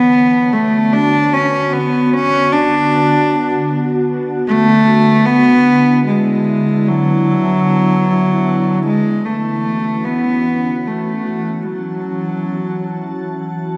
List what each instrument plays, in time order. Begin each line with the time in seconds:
Already playing: ambient pad D3 B3 C#5 A5, cello B3
0.35 ambient pad F#4
0.53 cello A3
0.93 cello D4
1.33 cello C#4
1.73 cello B3
2.13 cello C#4
2.53 cello D4
4.48 cello A3
5.26 cello B3
5.58 ambient pad E4
6.07 cello G#3
6.88 cello F#3
8.87 cello G#3
9.22 ambient pad E3, cello A3
9.43 ambient pad C#4
9.65 ambient pad F#4
10.04 cello B3
10.87 cello A3
11.14 ambient pad A5
11.67 cello F#3